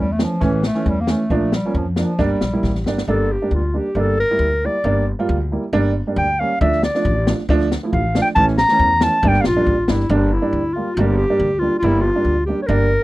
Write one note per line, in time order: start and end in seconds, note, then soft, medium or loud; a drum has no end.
0.00 0.24 E2 medium
0.00 0.14 G3 medium
0.12 0.25 A3 medium
0.19 0.31 E3 soft
0.19 0.31 A3 medium
0.19 0.31 C#4 medium
0.19 snare medium
0.24 0.46 F3 medium
0.41 0.68 A1 medium
0.41 0.58 E3 medium
0.41 0.65 E3 medium
0.41 0.58 A3 medium
0.41 0.58 C#4 medium
0.41 kick medium
0.41 snare soft
0.63 0.91 A3 medium
0.63 snare medium
0.75 0.92 E3 medium
0.75 0.92 A3 medium
0.75 0.92 C#4 medium
0.86 1.13 E2 loud
0.86 1.02 G3 medium
0.86 kick medium
1.01 1.12 A#3 medium
1.07 1.20 E3 medium
1.07 1.20 A3 soft
1.07 1.57 A3 medium
1.07 1.20 C#4 medium
1.07 snare medium
1.30 1.57 A#1 medium
1.30 1.47 F3 medium
1.30 1.48 A#3 medium
1.30 1.48 D4 medium
1.30 kick medium
1.52 1.79 G3 medium
1.52 snare medium
1.65 1.81 F3 medium
1.65 1.82 A#3 medium
1.65 1.82 C#4 medium
1.74 2.01 F2 loud
1.74 1.87 F3 medium
1.74 kick medium
1.96 2.09 F3 medium
1.96 2.22 F3 medium
1.96 2.09 A#3 medium
1.96 2.09 D4 medium
1.96 snare medium
2.18 2.32 G1 medium
2.18 2.36 G3 medium
2.18 2.87 G3 medium
2.18 2.36 A#3 medium
2.18 2.36 D4 loud
2.18 kick medium
2.18 snare soft
2.41 2.61 A#1 medium
2.41 snare medium
2.53 2.70 G3 medium
2.53 2.70 A#3 medium
2.53 2.70 E4 medium
2.63 2.83 A1 medium
2.63 kick medium
2.63 snare soft
2.75 snare soft
2.84 3.05 G1 medium
2.84 2.98 G3 medium
2.84 2.98 A#3 medium
2.84 2.98 D4 medium
2.84 snare medium
2.98 snare medium
3.08 3.34 G1 medium
3.08 3.25 G3 medium
3.08 3.25 A#3 medium
3.08 3.25 D4 medium
3.08 3.34 A4 medium
3.32 3.53 G4 medium
3.42 3.58 G3 medium
3.42 3.58 A#3 medium
3.42 3.58 D4 medium
3.51 3.78 D2 loud
3.51 3.79 F4 medium
3.74 3.85 G3 soft
3.74 3.85 A#3 medium
3.74 3.86 D4 medium
3.74 4.02 G4 medium
3.95 4.22 G1 medium
3.95 4.13 G3 medium
3.95 4.13 A#3 medium
3.95 4.13 D4 medium
4.00 4.19 A4 medium
4.20 4.67 A#4 loud
4.31 4.47 G3 medium
4.31 4.47 A#3 medium
4.31 4.47 E4 medium
4.39 4.66 D2 loud
4.64 4.75 G3 medium
4.64 4.75 A#3 soft
4.64 4.75 E4 medium
4.64 5.08 D5 medium
4.84 5.11 G1 loud
4.84 5.01 G3 medium
4.84 5.01 A#3 medium
4.84 5.02 D4 medium
5.19 5.35 G3 medium
5.19 5.35 A#3 medium
5.19 5.35 F4 medium
5.29 5.55 D2 loud
5.52 5.63 G3 medium
5.52 5.63 A#3 medium
5.52 5.63 E4 medium
5.73 5.99 G1 loud
5.73 5.90 G3 medium
5.73 5.90 A#3 medium
5.73 5.90 D4 loud
6.07 6.23 G3 medium
6.07 6.23 A#3 medium
6.07 6.24 D4 medium
6.16 6.43 D2 loud
6.16 6.41 G5 medium
6.39 6.51 G3 medium
6.39 6.51 A#3 medium
6.39 6.51 C#4 medium
6.39 6.60 F5 medium
6.61 6.87 D2 loud
6.61 6.78 F3 medium
6.61 6.78 A3 medium
6.61 6.78 D4 loud
6.61 6.82 E5 loud
6.61 kick medium
6.72 snare soft
6.83 7.46 D5 medium
6.83 snare medium
6.95 7.11 F3 medium
6.95 7.11 A3 medium
6.95 7.11 D4 medium
6.95 snare medium
7.05 7.31 A1 loud
7.05 kick medium
7.27 7.39 F3 medium
7.27 7.39 A3 soft
7.27 7.39 D4 medium
7.27 snare loud
7.38 snare soft
7.49 7.75 D2 loud
7.49 7.65 F3 loud
7.49 7.66 A3 medium
7.49 7.66 D4 loud
7.49 kick loud
7.61 snare soft
7.71 snare medium
7.83 7.99 F3 medium
7.83 7.99 A3 medium
7.83 8.00 E4 medium
7.93 8.19 A1 loud
7.93 8.20 F5 medium
7.93 kick medium
8.15 8.26 F3 medium
8.15 8.26 A3 medium
8.15 8.27 D4 medium
8.15 snare medium
8.22 8.28 G5 medium
8.26 snare soft
8.35 8.62 A1 loud
8.35 8.53 E3 medium
8.35 8.53 A3 medium
8.35 8.54 C#4 medium
8.35 8.45 A5 loud
8.35 kick loud
8.48 snare soft
8.58 9.05 A#5 loud
8.58 snare medium
8.69 8.87 E3 medium
8.69 8.86 A3 medium
8.69 8.86 C#4 medium
8.69 snare medium
8.79 9.06 E2 loud
8.79 kick medium
9.01 9.14 E3 medium
9.01 9.14 A3 soft
9.01 9.13 C#4 medium
9.01 9.29 A5 loud
9.01 snare medium
9.23 9.36 G1 loud
9.23 9.40 G3 medium
9.23 9.41 A#3 medium
9.23 9.41 D4 loud
9.23 kick medium
9.28 9.43 G5 medium
9.34 snare soft
9.41 9.46 F5 medium
9.41 snare loud
9.46 9.65 A#1 medium
9.46 9.86 F4 loud
9.56 9.73 G3 medium
9.56 9.73 A#3 medium
9.56 9.73 D4 medium
9.66 9.86 A1 medium
9.66 kick medium
9.86 10.08 G1 medium
9.86 10.00 G3 medium
9.86 10.00 A#3 medium
9.86 10.00 D4 medium
9.86 9.93 F4 medium
9.86 snare medium
9.91 10.12 E4 medium
10.00 snare soft
10.10 10.36 G1 loud
10.10 10.27 G3 medium
10.10 10.27 A#3 medium
10.10 10.34 D4 medium
10.10 10.27 D4 medium
10.33 10.75 E4 medium
10.41 10.59 G3 medium
10.41 10.59 A#3 medium
10.41 10.59 D4 medium
10.53 10.79 D2 loud
10.74 10.87 G3 medium
10.74 10.87 A#3 medium
10.74 10.96 F4 medium
10.74 10.87 F4 medium
10.95 11.23 G1 loud
10.95 11.17 G4 medium
10.99 11.14 G3 medium
10.99 11.14 A#3 medium
10.99 11.15 D4 medium
11.17 11.61 G4 loud
11.30 11.46 G3 medium
11.30 11.46 A#3 medium
11.30 11.46 D4 medium
11.40 11.66 D2 loud
11.59 11.73 G3 medium
11.59 11.73 A#3 medium
11.59 11.73 D4 medium
11.59 11.78 F4 medium
11.79 12.09 G1 loud
11.79 12.03 E4 loud
11.84 12.00 G3 loud
11.84 12.00 A#3 medium
11.84 12.00 E4 medium
12.01 12.45 F4 medium
12.15 12.32 G3 medium
12.15 12.32 A#3 medium
12.15 12.32 D4 medium
12.25 12.51 D2 medium
12.46 12.59 G3 medium
12.46 12.59 A#3 soft
12.46 12.60 D4 medium
12.46 12.61 G4 medium
12.62 12.68 C#5 medium
12.67 12.95 G1 loud
12.67 12.86 G3 medium
12.67 12.86 A#3 medium
12.67 12.86 D4 loud
12.67 13.04 A#4 loud